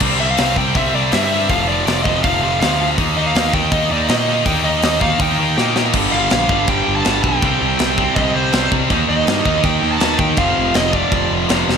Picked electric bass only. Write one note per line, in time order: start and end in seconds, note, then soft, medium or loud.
0.01 0.35 C2 medium
0.39 0.56 C2 medium
0.57 0.74 C2 medium
0.75 0.93 C2 medium
0.94 1.11 C2 medium
1.13 1.47 G2 medium
1.49 1.84 F1 medium
1.87 2.04 F1 loud
2.06 2.23 F1 medium
2.24 2.41 F1 medium
2.43 2.60 F1 medium
2.61 2.95 D2 medium
2.98 3.32 D#2 medium
3.35 3.52 D#2 loud
3.53 3.71 D#2 medium
3.72 3.89 D#2 medium
3.91 4.08 D#2 medium
4.09 4.43 A#2 medium
4.46 4.80 D#2 medium
4.83 5.00 D#2 loud
5.01 5.19 D#2 medium
5.20 5.37 D#2 medium
5.40 5.56 D#2 medium
5.57 5.91 A#2 loud
5.94 6.08 G1 medium
6.13 6.27 G1 loud
6.32 6.46 A#1 medium
6.49 6.63 G1 medium
6.68 6.82 G1 medium
6.88 7.01 G1 medium
7.06 7.20 G1 medium
7.24 7.38 B1 medium
7.43 7.56 C2 medium
7.62 7.75 C2 loud
7.80 8.07 C2 loud
8.16 8.30 C2 loud
8.35 8.49 C2 medium
8.53 8.67 C2 medium
8.72 8.86 C2 medium
8.91 9.04 D#2 loud
9.09 9.23 D#2 medium
9.27 9.41 G2 loud
9.45 9.59 D#2 medium
9.64 9.78 D#2 medium
9.82 9.96 D#2 medium
10.01 10.15 D#2 loud
10.19 10.33 D#2 medium
10.38 10.52 F1 medium
10.57 10.71 F1 loud
10.75 11.03 F1 loud
11.12 11.26 F1 medium
11.31 11.45 F1 medium
11.50 11.63 F1 loud
11.68 11.78 F1 medium